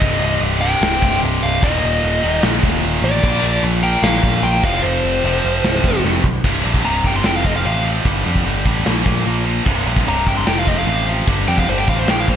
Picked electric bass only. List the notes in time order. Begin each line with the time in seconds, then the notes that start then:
0.02 C1
0.22 C1
0.41 C1
0.81 C1
1.02 C1
1.23 C1
1.43 C1
1.63 D#1
1.84 D#1
2.03 D#1
2.24 D#1
2.43 A#1
2.63 D#1
2.83 D#1
3.02 A1
3.23 A#1
3.42 A#1
3.63 A#1
4.03 A#1
4.23 A#1
4.42 A#1
4.64 F1
4.83 F1
5.03 F1
5.24 F1
5.44 F1
5.64 C1
5.84 F1
6.04 F1
6.24 B1
6.44 C1
6.65 A#1
6.85 C1
7.04 G1
7.25 F1
7.44 F1
7.65 A1
8.05 G1
8.26 F2
8.47 G1
8.65 A1
8.86 A#1
9.06 A#1
9.26 A#1
9.66 C1
9.86 A#1
10.07 C1
10.27 G1
10.47 F1
10.67 F1
10.87 A1
11.28 G1
11.48 F2
11.68 G1
11.88 A1
12.07 A#1
12.28 A#1